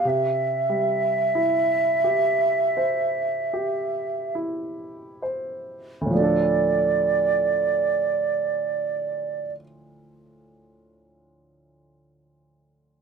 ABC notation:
X:1
M:4/4
L:1/8
Q:1/4=35
K:Dm
V:1 name="Flute"
e6 z2 | d8 |]
V:2 name="Upright piano"
C, G, E G c G E c | [D,,A,,F,A,DA]8 |]